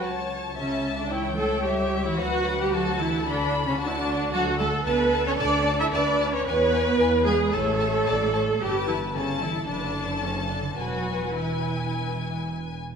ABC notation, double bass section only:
X:1
M:4/4
L:1/8
Q:1/4=112
K:D
V:1 name="Double bass section" clef=bass
C,,8 | D,,8 | [K:A] D,,2 D,,2 D,,2 D,,2 | E,,2 E,,2 A,,,2 A,,,2 |
=G,,,4 F,,,4 | E,,,6- E,,, z |]